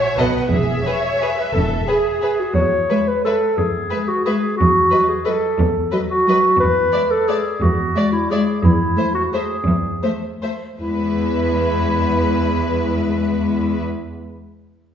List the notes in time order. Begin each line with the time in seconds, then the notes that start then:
Already playing: C#5
0.00 E5
0.17 B1 B2 A4 B4 D#5 F#5
0.51 E1 E2 G#4 E5
0.85 G#4 B4 C#5
1.21 G#4 B4
1.38 B4
1.54 E1 E2 A4
1.88 G#4 B4
2.04 G#4
2.22 G#4 B4
2.40 F#4
2.55 E2 C#5
2.90 G#3 B4 E5
3.08 B4
3.25 G#3 A4 B4 E5
3.57 E2 G#4
3.90 G#3 B4 E5
4.08 F#4
4.25 G#3 G#4 B4 E5
4.57 E2 F#4
4.91 F#3 B4 D#5
5.09 G#4
5.25 F#3 A4 B4 D#5
5.58 E2
5.92 F#3 B4 D#5
6.10 F#4
6.27 F#3 B4 D#5
6.60 E2 B4
6.93 G#3 D5 E5
7.11 A4
7.28 G#3 G#4 D5 E5
7.62 E2 F#4
7.95 G#3 D5 E5
8.12 E4
8.30 G#3 G#4 D5 E5
8.63 E2 E4
8.97 A3 C5 E5
9.14 F#4
9.32 A3 G#4 C5 E5
9.67 E2
10.03 A3 C5 E5
10.42 A3 C5 E5
10.80 E2 G#3 E4 B4 E5